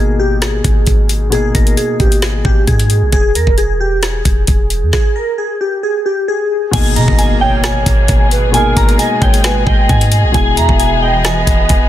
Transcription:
Already playing: 808-style bass G#1, grand piano B2 A#3 D#4 G#4, synth keys G#4
0.19 synth keys G4
0.42 synth keys G#4, snare, closed hi-hat
0.64 808-style bass G#1, kick, closed hi-hat
0.87 808-style bass G#1, kick, closed hi-hat
1.09 closed hi-hat
1.30 grand piano B2 A#3 D#4, synth keys G#4, closed hi-hat
1.34 grand piano G#4
1.55 808-style bass G#1, synth keys A#4, kick, closed hi-hat
1.67 closed hi-hat
1.77 synth keys G#4, closed hi-hat
2.00 808-style bass G#1, synth keys G4, kick, closed hi-hat
2.12 closed hi-hat
2.22 synth keys G#4, snare, closed hi-hat
2.45 808-style bass G#1, synth keys G4, kick
2.67 808-style bass G#2, synth keys G#4, kick, closed hi-hat
2.79 closed hi-hat
2.90 closed hi-hat
3.02 808-style bass B1
3.12 808-style bass E1, synth keys G#4, kick, closed hi-hat
3.35 808-style bass E2, synth keys A#4, closed hi-hat
3.47 808-style bass E1, kick
3.58 synth keys G#4, closed hi-hat
3.80 synth keys G4
4.03 synth keys G#4, snare, closed hi-hat
4.25 808-style bass E1, kick, closed hi-hat
4.47 808-style bass E1, kick, closed hi-hat
4.70 closed hi-hat
4.83 808-style bass E2
4.93 synth keys G#4, kick, snare
5.16 synth keys A#4
5.38 synth keys G#4
5.61 synth keys G4
5.83 synth keys G#4
6.06 synth keys G4
6.28 synth keys G#4
6.71 808-style bass G#1, grand piano B2 A#3 D#4, string section B2 A#3 G#4, synth keys G#5, kick, closed hi-hat, crash, impact
6.76 grand piano G#4
6.96 808-style bass B2, pan flute D#5, synth keys A#5, closed hi-hat
7.08 808-style bass G#1, kick
7.19 synth keys G#5, closed hi-hat
7.41 pan flute C#5, synth keys G5
7.64 synth keys G#5, snare, closed hi-hat
7.86 808-style bass G#1, kick, closed hi-hat
8.08 808-style bass G#1, kick, closed hi-hat
8.31 pan flute B4, closed hi-hat
8.52 grand piano B2 A#3 D#4, string section G#3, pan flute A#4, synth keys G#5, closed hi-hat
8.56 grand piano G#4
8.77 808-style bass G#1, synth keys A#5, kick, closed hi-hat
8.89 closed hi-hat
8.99 pan flute D#5, synth keys G#5, closed hi-hat
9.22 808-style bass G#1, pan flute C#5, synth keys G5, kick, closed hi-hat
9.34 closed hi-hat
9.44 pan flute B4, synth keys G#5, snare, closed hi-hat
9.67 808-style bass G#1, pan flute D#5, synth keys G5, kick
9.89 808-style bass G#2, synth keys G#5, kick, closed hi-hat
10.01 closed hi-hat
10.12 closed hi-hat
10.24 808-style bass B1
10.32 808-style bass E1, grand piano B2 G#3 E4, string section E3 B3, synth keys G#5, kick, closed hi-hat
10.36 grand piano G#4
10.57 808-style bass E2, pan flute E5, synth keys A#5, closed hi-hat
10.69 808-style bass E1, kick
10.80 synth keys G#5, closed hi-hat
11.02 pan flute D#5, synth keys G5
11.25 synth keys G#5, snare, closed hi-hat
11.47 808-style bass E1, kick, closed hi-hat
11.69 808-style bass E1, kick, closed hi-hat

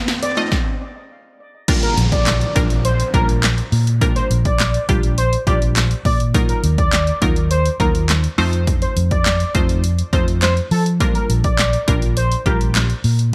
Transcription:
Already playing: supersaw synth F2 D#3 A3, steel pan D#5, riser
0.08 snare, closed hi-hat
0.23 steel pan D5, closed hi-hat
0.37 synth stab A3 D#4 F4 D#5, steel pan D#5, closed hi-hat
0.52 kick, snare
1.68 synth stab G3 A#3 D4 F4 A#4, kick, closed hi-hat, crash, downlifter
1.83 analog synth lead A#4, closed hi-hat
1.97 fingered electric bass A#1, closed hi-hat
2.12 analog synth lead D5, kick, closed hi-hat
2.27 snare, clap, closed hi-hat
2.41 closed hi-hat
2.55 fingered electric bass A#1, synth stab G3 A#3 D4 F4 A#4, kick, closed hi-hat
2.70 closed hi-hat
2.85 analog synth lead C5, closed hi-hat
3.00 closed hi-hat
3.14 fingered electric bass A#1, synth stab G3 A#3 D4 F4 A#4, analog synth lead A#4, kick, closed hi-hat
3.29 closed hi-hat
3.43 snare, clap, closed hi-hat
3.58 closed hi-hat
3.72 fingered electric bass A#2, open hi-hat
3.87 closed hi-hat
4.01 synth stab G3 A#3 D4 F4 A#4, kick, closed hi-hat
4.16 analog synth lead C5, closed hi-hat
4.30 fingered electric bass A#1, closed hi-hat
4.45 analog synth lead D5, kick, closed hi-hat
4.60 snare, clap, closed hi-hat
4.74 closed hi-hat
4.89 fingered electric bass A#1, synth stab G3 A#3 D4 F4 G4, kick, closed hi-hat
5.03 closed hi-hat
5.18 analog synth lead C5, closed hi-hat
5.33 closed hi-hat
5.47 fingered electric bass A#1, synth stab G3 A#3 D4 F4 G4, analog synth lead D5, kick, closed hi-hat
5.62 closed hi-hat
5.76 snare, clap, closed hi-hat
5.91 closed hi-hat
6.05 fingered electric bass A#2, analog synth lead D5, kick, open hi-hat
6.20 closed hi-hat
6.34 synth stab F#3 A#3 D#4 F4 A#4, kick, closed hi-hat
6.49 analog synth lead A#4, closed hi-hat
6.64 fingered electric bass D#2, closed hi-hat
6.78 analog synth lead D5, kick, closed hi-hat
6.93 snare, clap, closed hi-hat
7.07 closed hi-hat
7.22 fingered electric bass D#2, synth stab F#3 A#3 D#4 F4 A#4, kick, closed hi-hat
7.36 closed hi-hat
7.51 analog synth lead C5, closed hi-hat
7.66 closed hi-hat
7.80 fingered electric bass D#2, synth stab F#3 A#3 D#4 F4 A#4, analog synth lead A#4, kick, closed hi-hat
7.95 closed hi-hat
8.09 snare, clap, closed hi-hat
8.24 closed hi-hat
8.38 fingered electric bass F2, synth stab A3 C4 D#4 F4 C5, open hi-hat
8.53 closed hi-hat
8.67 kick, closed hi-hat
8.82 analog synth lead C5, closed hi-hat
8.96 fingered electric bass F2, closed hi-hat
9.11 analog synth lead D5, kick, closed hi-hat
9.26 snare, clap, closed hi-hat
9.40 closed hi-hat
9.55 fingered electric bass F2, synth stab A3 C4 D#4 F4 C5, kick, closed hi-hat
9.69 closed hi-hat
9.84 closed hi-hat
9.99 closed hi-hat
10.13 fingered electric bass F2, synth stab A3 C4 D#4 F4 C5, analog synth lead C5, kick, closed hi-hat
10.28 closed hi-hat
10.42 analog synth lead C5, snare, clap, closed hi-hat
10.57 closed hi-hat
10.71 fingered electric bass F3, analog synth lead A4, open hi-hat
10.86 closed hi-hat
11.00 synth stab G3 A#3 D4 F4 A#4, kick, closed hi-hat
11.15 analog synth lead A#4, closed hi-hat
11.30 fingered electric bass A#1, closed hi-hat
11.44 analog synth lead D5, kick, closed hi-hat
11.59 snare, clap, closed hi-hat
11.73 closed hi-hat
11.88 fingered electric bass A#1, synth stab G3 A#3 D4 F4 A#4, kick, closed hi-hat
12.02 closed hi-hat
12.17 analog synth lead C5, closed hi-hat
12.32 closed hi-hat
12.46 fingered electric bass A#1, synth stab G3 A#3 D4 F4 G4, analog synth lead A#4, kick, closed hi-hat
12.61 closed hi-hat
12.75 snare, clap, closed hi-hat
12.90 closed hi-hat
13.04 fingered electric bass A#2, open hi-hat
13.19 closed hi-hat

